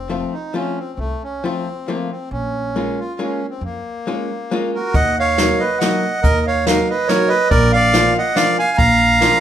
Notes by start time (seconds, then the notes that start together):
Already playing: F1 C4
0.10 F3 A3 C4 F4
0.33 D#4
0.54 F3 A3 C4 C#4 F4
0.78 C4
0.97 C2 A3
1.23 C#4
1.42 F3 A3 C4 F4
1.87 F3 A3 A#3 C4 F4
2.11 C4
2.31 A#1 C#4
2.76 G#3 A#3 C#4 F4
3.00 F4
3.19 G#3 A#3 C#4 F4
3.50 C4
3.61 F2 A#3
4.07 G#3 A#3 C#4 F4
4.51 G#3 A#3 C#4 F4
4.75 F#4 A#4
4.94 D#2 D#5 F#5, kick, closed hi-hat
5.19 C#5 F5
5.38 F#3 A#3 D#4 F#4, snare, closed hi-hat
5.59 B4 D#5
5.79 F#3 A#3 D#4 D#5 F#5, snare, closed hi-hat
5.83 F#4
6.22 D#2 A#4 D#5, kick, closed hi-hat
6.47 C#5 F5
6.67 F#3 A#3 D#4 F#4 A#4 F5, snare, closed hi-hat
6.90 B4 D#5
7.07 F#3 A#3 D#4 A#4 C#5, snare, closed hi-hat
7.12 F#4
7.28 B4 D#5
7.50 A#1 A#4 D5, kick, closed hi-hat
7.73 D5 F5
7.93 F3 A#3 D4 F4, snare, closed hi-hat
8.18 D#5 F#5
8.36 F3 A#3 D4 F4 D5 F5, snare, closed hi-hat
8.59 F5 G#5
8.78 A#1 F5 A#5, kick, closed hi-hat
9.21 F3 A#3 D4 F4, snare, closed hi-hat